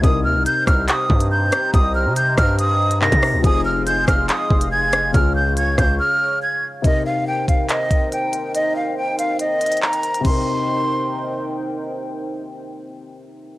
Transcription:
<<
  \new Staff \with { instrumentName = "Flute" } { \time 4/4 \key c \phrygian \tempo 4 = 141 ees'''8 f'''8 g'''8 f'''8 ees'''4 g'''4 | ees'''8 f'''8 g'''8 f'''8 ees'''4 bes'''4 | ees'''8 f'''8 g'''8 f'''8 ees'''4 aes'''4 | f'''8 g'''8 aes'''8 g'''8 f'''4 aes'''4 |
ees''8 f''8 g''8 f''8 ees''4 g''4 | ees''8 f''8 g''8 f''8 ees''4 bes''4 | c'''2. r4 | r1 | }
  \new Staff \with { instrumentName = "Analog synth pad" } { \time 4/4 \key c \phrygian << { <c'' bes''>1~ | <c'' bes''>1 | <ees'' c'''>1 | <des'' des'''>1 |
<bes' g''>1~ | <bes' g''>1 | <ees' bes' c'' g''>1~ | <ees' bes' c'' g''>1 | } \\ { <g' ees''>1~ | <g' ees''>1 | <aes' f''>1~ | <aes' f''>1 |
<ees' c''>1~ | <ees' c''>1 | r1 | r1 | } >> }
  \new Staff \with { instrumentName = "Grand piano" } { \time 4/4 \key c \phrygian <c c' ees' bes'>1~ | <c c' ees' bes'>2. <c c' ees' bes'>4 | <f c' ees' aes'>1 | <des des' f' aes'>1 |
<c c' ees' bes'>1~ | <c c' ees' bes'>1 | <c c' ees' bes'>1~ | <c c' ees' bes'>1 | }
  \new Staff \with { instrumentName = "808-style bass" } { \clef bass \time 4/4 \key c \phrygian c,8 ees,16 c,16 r8 c,8 r8 g,4 r8 | c,8. c8. g,4.~ g,16 c8 des,16 | f,,4. f,,8 r8 f,,4. | des,4. des,8 r2 |
r1 | r1 | r1 | r1 | }
  \new DrumStaff \with { instrumentName = "Drums" } \drummode { \time 4/4 <hh bd>4 hh8 <hh bd ss>8 <hc hh>8 bd16 hh16 r8 <hh ss>8 | <hh bd>4 hh8 <hh bd ss>8 hh8. hh16 hc16 <hh bd>16 <hho ss>8 | <hh bd>4 hh8 <hh bd ss>8 <hc hh>8 bd16 hh16 r8 <hh ss>8 | <hh bd>4 hh8 <hh bd ss>8 r4 r4 |
<hh bd>4 r8 <hh bd>8 <hc hh>8 <hh bd>8 hh8 hh8 | hh4 r8 hh8 hh8 hh32 hh32 hh32 hh32 hc16 hh16 hh16 hh16 | <cymc bd>4 r4 r4 r4 | r4 r4 r4 r4 | }
>>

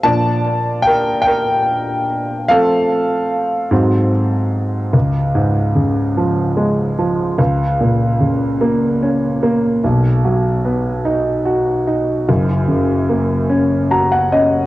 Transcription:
<<
  \new Staff \with { instrumentName = "Grand piano" } { \time 6/8 \key bes \lydian \tempo 4. = 49 <d'' a''>4 <bes' g''>8 <bes' g''>4 r8 | <a' f''>2 r4 | \key cis \mixolydian r2. | r2. |
r2. | r2 ais''16 fis''16 dis''8 | }
  \new Staff \with { instrumentName = "Grand piano" } { \clef bass \time 6/8 \key bes \lydian <bes, f d'>8 r2 r8 | <f a c'>8 r4 <aes, ges c'>4. | \key cis \mixolydian cis,8 gis,8 cis8 eis8 gis8 eis8 | cis,8 ais,8 cis8 ais8 cis'8 ais8 |
<b,, b,>8 fis8 b8 dis'8 fis'8 dis'8 | <fis,, fis,>8 cis8 ais8 cis'8 fis'8 cis'8 | }
>>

